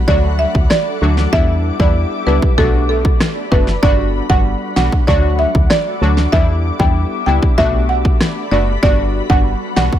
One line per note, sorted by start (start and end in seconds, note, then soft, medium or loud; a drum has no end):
0.00 1.30 F#5 medium
0.07 0.46 D2 loud
0.07 0.94 F#3 medium
0.07 0.94 A3 medium
0.07 0.94 D4 medium
0.07 0.94 F#4 loud
0.07 1.32 A4 medium
0.07 0.19 D5 medium
0.07 1.31 D6 medium
0.07 kick medium
0.39 0.50 E5 medium
0.55 0.68 D2 medium
0.55 kick loud
0.70 1.14 D5 medium
0.70 cross-stick medium
0.70 snare loud
1.01 1.27 D2 medium
1.01 1.30 F#3 medium
1.01 1.30 A3 medium
1.01 1.30 D4 medium
1.01 1.30 F#4 medium
1.17 snare medium
1.32 1.71 E2 loud
1.32 1.76 G3 medium
1.32 1.76 B3 medium
1.32 1.76 D4 medium
1.32 1.76 E4 loud
1.32 2.57 G4 medium
1.32 1.44 E5 loud
1.32 2.57 E5 medium
1.32 2.57 D6 medium
1.32 kick loud
1.79 2.05 E2 medium
1.79 2.23 G3 medium
1.79 2.23 B3 medium
1.79 2.23 D4 medium
1.79 2.23 E4 medium
1.79 1.91 D5 medium
1.79 kick loud
2.26 2.39 C#2 medium
2.26 2.55 G3 medium
2.26 2.55 B3 medium
2.26 2.55 D4 medium
2.26 2.55 E4 medium
2.26 2.38 B4 medium
2.42 kick medium
2.58 3.09 B1 loud
2.58 3.44 A3 medium
2.58 3.44 B3 medium
2.58 3.44 D4 medium
2.58 3.44 F#4 loud
2.58 3.82 A4 medium
2.58 2.69 A4 medium
2.58 3.82 D5 medium
2.58 5.05 B5 medium
2.58 kick medium
2.89 3.00 A4 medium
3.05 kick loud
3.20 cross-stick medium
3.20 snare loud
3.51 3.77 F#1 medium
3.51 3.71 A3 medium
3.51 3.72 B3 medium
3.51 3.72 D4 medium
3.51 3.72 F#4 medium
3.51 3.63 B4 medium
3.51 kick medium
3.67 snare medium
3.83 4.21 G1 loud
3.83 4.26 G3 loud
3.83 5.07 G3 medium
3.83 4.26 B3 medium
3.83 4.26 D4 medium
3.83 4.26 F#4 loud
3.83 3.94 D5 medium
3.83 6.30 F#5 medium
3.83 kick loud
4.30 4.55 G1 medium
4.30 4.73 G3 medium
4.30 4.73 B3 medium
4.30 4.73 D4 medium
4.30 4.73 F#4 medium
4.30 4.41 F#5 medium
4.30 kick loud
4.76 4.89 B1 medium
4.76 5.05 G3 medium
4.76 5.05 B3 medium
4.76 5.05 D4 medium
4.76 5.06 F#4 medium
4.76 4.88 F#5 medium
4.76 snare loud
4.92 kick medium
5.07 5.46 D2 loud
5.07 5.94 F#3 medium
5.07 5.94 A3 medium
5.07 5.94 D4 medium
5.07 5.94 F#4 loud
5.07 6.32 A4 medium
5.07 5.19 D5 medium
5.07 7.55 D6 medium
5.07 kick medium
5.39 5.50 E5 medium
5.55 5.68 D2 medium
5.55 kick loud
5.70 6.14 D5 medium
5.70 cross-stick medium
5.70 snare loud
6.01 6.27 D2 medium
6.01 6.30 F#3 medium
6.01 6.30 A3 medium
6.01 6.30 D4 medium
6.01 6.30 F#4 medium
6.17 snare medium
6.32 6.71 E2 loud
6.32 6.76 G3 medium
6.32 6.76 B3 medium
6.32 6.76 D4 medium
6.32 6.76 E4 loud
6.32 7.57 G4 medium
6.32 6.44 E5 loud
6.32 7.57 E5 medium
6.32 kick loud
6.79 7.05 E2 medium
6.79 7.23 G3 medium
6.79 7.23 B3 medium
6.79 7.23 D4 medium
6.79 7.23 E4 medium
6.79 6.91 G5 medium
6.79 kick loud
7.26 7.39 C#2 medium
7.26 7.55 G3 medium
7.26 7.55 B3 medium
7.26 7.55 D4 medium
7.26 7.56 E4 medium
7.26 7.38 G5 medium
7.43 kick medium
7.58 8.09 B1 loud
7.58 8.44 A3 medium
7.58 8.44 B3 medium
7.58 8.44 D4 medium
7.58 8.44 F#4 loud
7.58 8.82 A4 medium
7.58 8.82 D5 medium
7.58 7.69 E5 medium
7.58 9.99 B5 medium
7.58 kick medium
7.89 8.00 F#5 medium
8.05 kick loud
8.21 cross-stick medium
8.21 snare loud
8.51 8.77 F#1 loud
8.51 8.71 A3 medium
8.51 8.72 B3 medium
8.51 8.72 D4 medium
8.51 8.72 F#4 medium
8.51 8.63 D5 medium
8.83 9.21 G1 loud
8.83 9.26 G3 medium
8.83 9.99 G3 medium
8.83 9.26 B3 medium
8.83 9.26 D4 medium
8.83 9.26 F#4 loud
8.83 8.94 D5 loud
8.83 9.99 F#5 medium
8.83 kick loud
9.29 9.55 G1 loud
9.29 9.73 G3 medium
9.29 9.73 B3 medium
9.29 9.73 D4 medium
9.29 9.73 F#4 medium
9.29 9.41 F#5 medium
9.29 kick loud
9.76 9.89 B1 medium
9.76 9.99 G3 medium
9.76 9.99 B3 medium
9.76 9.99 D4 medium
9.76 9.99 F#4 medium
9.76 9.88 F#5 medium
9.76 snare loud
9.93 kick medium